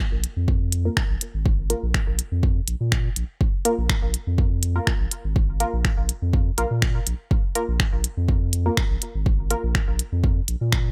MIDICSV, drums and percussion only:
0, 0, Header, 1, 2, 480
1, 0, Start_track
1, 0, Tempo, 487805
1, 1433, Time_signature, 4, 2, 24, 8
1, 10743, End_track
2, 0, Start_track
2, 0, Title_t, "Drums"
2, 233, Note_on_c, 9, 42, 89
2, 331, Note_off_c, 9, 42, 0
2, 472, Note_on_c, 9, 36, 116
2, 571, Note_off_c, 9, 36, 0
2, 713, Note_on_c, 9, 42, 92
2, 811, Note_off_c, 9, 42, 0
2, 953, Note_on_c, 9, 26, 92
2, 953, Note_on_c, 9, 36, 115
2, 1051, Note_off_c, 9, 26, 0
2, 1051, Note_off_c, 9, 36, 0
2, 1193, Note_on_c, 9, 42, 93
2, 1291, Note_off_c, 9, 42, 0
2, 1432, Note_on_c, 9, 36, 124
2, 1531, Note_off_c, 9, 36, 0
2, 1673, Note_on_c, 9, 42, 94
2, 1771, Note_off_c, 9, 42, 0
2, 1913, Note_on_c, 9, 26, 91
2, 1913, Note_on_c, 9, 36, 118
2, 2011, Note_off_c, 9, 26, 0
2, 2011, Note_off_c, 9, 36, 0
2, 2153, Note_on_c, 9, 42, 94
2, 2251, Note_off_c, 9, 42, 0
2, 2392, Note_on_c, 9, 36, 122
2, 2491, Note_off_c, 9, 36, 0
2, 2633, Note_on_c, 9, 42, 98
2, 2731, Note_off_c, 9, 42, 0
2, 2872, Note_on_c, 9, 36, 122
2, 2873, Note_on_c, 9, 26, 93
2, 2971, Note_off_c, 9, 26, 0
2, 2971, Note_off_c, 9, 36, 0
2, 3113, Note_on_c, 9, 42, 94
2, 3211, Note_off_c, 9, 42, 0
2, 3352, Note_on_c, 9, 36, 124
2, 3451, Note_off_c, 9, 36, 0
2, 3593, Note_on_c, 9, 42, 99
2, 3691, Note_off_c, 9, 42, 0
2, 3832, Note_on_c, 9, 36, 122
2, 3833, Note_on_c, 9, 26, 93
2, 3931, Note_off_c, 9, 26, 0
2, 3931, Note_off_c, 9, 36, 0
2, 4073, Note_on_c, 9, 42, 93
2, 4171, Note_off_c, 9, 42, 0
2, 4313, Note_on_c, 9, 36, 125
2, 4411, Note_off_c, 9, 36, 0
2, 4553, Note_on_c, 9, 42, 93
2, 4651, Note_off_c, 9, 42, 0
2, 4793, Note_on_c, 9, 26, 89
2, 4793, Note_on_c, 9, 36, 120
2, 4891, Note_off_c, 9, 26, 0
2, 4891, Note_off_c, 9, 36, 0
2, 5033, Note_on_c, 9, 42, 97
2, 5131, Note_off_c, 9, 42, 0
2, 5273, Note_on_c, 9, 36, 125
2, 5371, Note_off_c, 9, 36, 0
2, 5513, Note_on_c, 9, 42, 93
2, 5611, Note_off_c, 9, 42, 0
2, 5753, Note_on_c, 9, 26, 86
2, 5753, Note_on_c, 9, 36, 125
2, 5851, Note_off_c, 9, 26, 0
2, 5851, Note_off_c, 9, 36, 0
2, 5993, Note_on_c, 9, 42, 91
2, 6091, Note_off_c, 9, 42, 0
2, 6233, Note_on_c, 9, 36, 124
2, 6331, Note_off_c, 9, 36, 0
2, 6473, Note_on_c, 9, 42, 94
2, 6571, Note_off_c, 9, 42, 0
2, 6713, Note_on_c, 9, 26, 88
2, 6713, Note_on_c, 9, 36, 120
2, 6811, Note_off_c, 9, 26, 0
2, 6811, Note_off_c, 9, 36, 0
2, 6953, Note_on_c, 9, 42, 94
2, 7052, Note_off_c, 9, 42, 0
2, 7193, Note_on_c, 9, 36, 119
2, 7291, Note_off_c, 9, 36, 0
2, 7433, Note_on_c, 9, 42, 88
2, 7531, Note_off_c, 9, 42, 0
2, 7673, Note_on_c, 9, 26, 88
2, 7673, Note_on_c, 9, 36, 118
2, 7771, Note_off_c, 9, 26, 0
2, 7771, Note_off_c, 9, 36, 0
2, 7913, Note_on_c, 9, 42, 90
2, 8011, Note_off_c, 9, 42, 0
2, 8153, Note_on_c, 9, 36, 118
2, 8251, Note_off_c, 9, 36, 0
2, 8393, Note_on_c, 9, 42, 92
2, 8491, Note_off_c, 9, 42, 0
2, 8633, Note_on_c, 9, 26, 85
2, 8633, Note_on_c, 9, 36, 119
2, 8731, Note_off_c, 9, 26, 0
2, 8731, Note_off_c, 9, 36, 0
2, 8873, Note_on_c, 9, 42, 91
2, 8972, Note_off_c, 9, 42, 0
2, 9113, Note_on_c, 9, 36, 115
2, 9211, Note_off_c, 9, 36, 0
2, 9353, Note_on_c, 9, 42, 88
2, 9451, Note_off_c, 9, 42, 0
2, 9593, Note_on_c, 9, 26, 86
2, 9593, Note_on_c, 9, 36, 113
2, 9691, Note_off_c, 9, 26, 0
2, 9691, Note_off_c, 9, 36, 0
2, 9833, Note_on_c, 9, 42, 89
2, 9932, Note_off_c, 9, 42, 0
2, 10073, Note_on_c, 9, 36, 117
2, 10171, Note_off_c, 9, 36, 0
2, 10313, Note_on_c, 9, 42, 86
2, 10412, Note_off_c, 9, 42, 0
2, 10553, Note_on_c, 9, 26, 89
2, 10553, Note_on_c, 9, 36, 112
2, 10651, Note_off_c, 9, 26, 0
2, 10651, Note_off_c, 9, 36, 0
2, 10743, End_track
0, 0, End_of_file